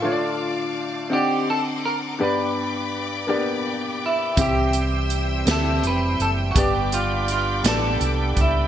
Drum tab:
HH |------|------|xxxxxx|xxxxxx|
SD |------|------|---o--|---o--|
BD |------|------|o-----|o----o|